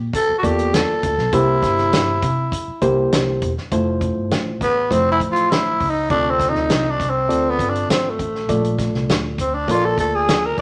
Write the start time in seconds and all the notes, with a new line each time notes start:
0.13 A4, kick, closed hi-hat
0.29 muted fingered electric bass stroke
0.38 F#4
0.43 E2 A#3 F4 G4 A4 D5, kick, closed hi-hat
0.59 closed hi-hat
0.74 A4, snare, closed hi-hat
1.03 D2, kick, closed hi-hat
1.18 B1, snare
1.33 C2 C3 A#3 E4 G4 C5, kick, closed hi-hat
1.62 G1, kick, snare, closed hi-hat
1.78 snare
1.93 G1, snare, closed hi-hat
2.22 C3, kick, closed hi-hat
2.52 kick, closed hi-hat
2.68 muted fingered electric bass stroke
2.81 C2 A#3 E4 G4 C5, kick, closed hi-hat
3.12 C2, snare, closed hi-hat
3.42 E1, kick, closed hi-hat
3.58 snare
3.72 F1 A3 E4 F4 C5, kick, closed hi-hat
4.01 kick, closed hi-hat
4.16 G1
4.30 A1, snare, closed hi-hat
4.61 A1 B3, kick, closed hi-hat
4.90 F1 F3 A3 C4 E4 C5, kick, closed hi-hat
5.12 E4
5.20 A1, kick, closed hi-hat
5.32 F4
5.36 closed hi-hat
5.50 E4, snare, closed hi-hat
5.80 C#2, kick, open hi-hat
5.90 D#4
6.10 D2 C3 C4 D4 F4 A4 D5, kick, closed hi-hat
6.30 C4
6.40 kick, snare, closed hi-hat
6.49 D#4
6.54 D2, snare
6.70 C2, snare, closed hi-hat
6.90 D4
7.00 C2, kick, closed hi-hat
7.10 C4
7.29 D2 C4 F4 A4 D5, closed hi-hat
7.50 B3
7.59 G1, kick, closed hi-hat
7.69 D4
7.75 closed hi-hat
7.89 G#1 C4, snare, closed hi-hat
8.10 A3
8.19 A1, kick, closed hi-hat
8.35 snare
8.49 A#1 A#2 A3 F4 A4 D5, kick, closed hi-hat
8.65 closed hi-hat
8.79 kick, snare, closed hi-hat
8.94 C2, snare
9.09 D2, snare, closed hi-hat
9.38 D2 C4, kick, closed hi-hat
9.55 D4
9.68 A#1 A#3 F4 A4 C#5, kick, closed hi-hat
9.75 D5
9.85 A4
9.98 D2 A4, kick, closed hi-hat
10.15 G#4
10.29 snare, closed hi-hat
10.45 A#4
10.58 B1, kick, open hi-hat